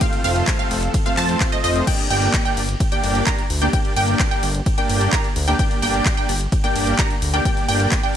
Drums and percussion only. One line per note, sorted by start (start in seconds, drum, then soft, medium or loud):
0.01 kick loud
0.01 closed hi-hat loud
0.01 ride medium
0.13 closed hi-hat soft
0.24 open hi-hat loud
0.36 closed hi-hat soft
0.47 kick loud
0.47 clap loud
0.47 closed hi-hat loud
0.47 ride medium
0.59 closed hi-hat soft
0.71 open hi-hat medium
0.83 closed hi-hat soft
0.94 kick loud
0.94 closed hi-hat loud
0.94 ride medium
1.06 closed hi-hat soft
1.17 clap medium
1.17 open hi-hat loud
1.29 closed hi-hat soft
1.40 kick loud
1.40 clap loud
1.40 closed hi-hat loud
1.40 ride medium
1.52 closed hi-hat soft
1.64 open hi-hat medium
1.76 closed hi-hat soft
1.87 kick loud
1.87 closed hi-hat loud
1.87 crash loud
1.87 ride medium
1.99 closed hi-hat soft
2.11 open hi-hat loud
2.22 closed hi-hat soft
2.34 kick loud
2.34 clap loud
2.34 closed hi-hat loud
2.34 ride medium
2.46 closed hi-hat soft
2.57 open hi-hat loud
2.69 closed hi-hat soft
2.80 kick loud
2.80 closed hi-hat loud
2.80 ride medium
2.92 closed hi-hat soft
3.04 open hi-hat loud
3.15 closed hi-hat soft
3.27 kick loud
3.27 clap loud
3.27 closed hi-hat loud
3.27 ride medium
3.38 closed hi-hat soft
3.50 open hi-hat medium
3.62 closed hi-hat soft
3.73 kick loud
3.73 closed hi-hat medium
3.73 ride medium
3.85 closed hi-hat soft
3.96 open hi-hat loud
4.08 closed hi-hat soft
4.20 kick loud
4.20 clap loud
4.20 closed hi-hat loud
4.20 ride medium
4.31 closed hi-hat soft
4.43 open hi-hat loud
4.55 closed hi-hat soft
4.66 kick loud
4.66 closed hi-hat medium
4.66 ride medium
4.78 closed hi-hat soft
4.90 open hi-hat loud
5.01 closed hi-hat soft
5.13 kick loud
5.13 clap loud
5.13 closed hi-hat medium
5.13 ride medium
5.24 closed hi-hat soft
5.36 open hi-hat loud
5.48 closed hi-hat soft
5.59 kick loud
5.59 closed hi-hat loud
5.59 ride medium
5.71 closed hi-hat soft
5.83 open hi-hat loud
5.94 closed hi-hat soft
6.06 kick loud
6.06 clap loud
6.06 closed hi-hat loud
6.06 ride medium
6.17 closed hi-hat soft
6.29 open hi-hat loud
6.41 closed hi-hat soft
6.52 kick loud
6.52 closed hi-hat medium
6.52 ride medium
6.64 closed hi-hat soft
6.76 open hi-hat loud
6.87 closed hi-hat soft
6.99 kick loud
6.99 clap loud
6.99 closed hi-hat medium
6.99 ride medium
7.10 closed hi-hat soft
7.22 open hi-hat loud
7.34 closed hi-hat soft
7.45 kick loud
7.45 closed hi-hat medium
7.45 ride medium
7.57 closed hi-hat soft
7.69 open hi-hat loud
7.80 closed hi-hat soft
7.92 kick loud
7.92 clap loud
7.92 closed hi-hat medium
7.92 ride medium
8.03 closed hi-hat soft